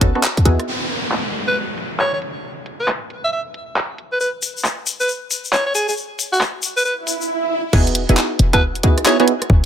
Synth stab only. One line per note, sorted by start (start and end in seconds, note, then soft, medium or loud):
0.01 0.13 B3 medium
0.01 0.13 C#4 medium
0.01 0.13 D#4 medium
0.01 0.13 F#4 medium
0.01 0.13 A4 loud
0.15 0.22 B3 medium
0.15 0.22 C#4 medium
0.15 0.22 D#4 medium
0.15 0.22 F#4 medium
0.15 0.22 A4 medium
0.45 0.89 B3 medium
0.45 0.90 D#4 medium
0.45 0.89 E4 medium
0.45 0.89 F#4 medium
0.45 0.89 G#4 loud
7.73 8.04 B3 loud
7.73 8.04 D#4 medium
7.73 8.04 E4 medium
7.73 8.04 F#4 medium
7.73 8.04 G#4 loud
8.09 8.50 B3 medium
8.09 8.50 D#4 medium
8.09 8.50 E4 medium
8.09 8.50 F#4 medium
8.09 8.50 G#4 medium
8.53 8.60 B3 loud
8.53 8.60 D#4 medium
8.53 8.60 E4 medium
8.53 8.60 F#4 medium
8.53 8.60 G#4 loud
8.84 9.04 B3 medium
8.84 9.04 D#4 medium
8.84 9.04 E4 medium
8.84 9.04 F#4 medium
8.84 9.04 G#4 medium
9.06 9.17 B3 loud
9.06 9.17 D#4 medium
9.06 9.17 E4 medium
9.06 9.17 F#4 medium
9.06 9.17 G#4 loud
9.20 9.32 B3 loud
9.20 9.32 D#4 medium
9.20 9.32 E4 medium
9.20 9.32 F#4 medium
9.20 9.32 G#4 loud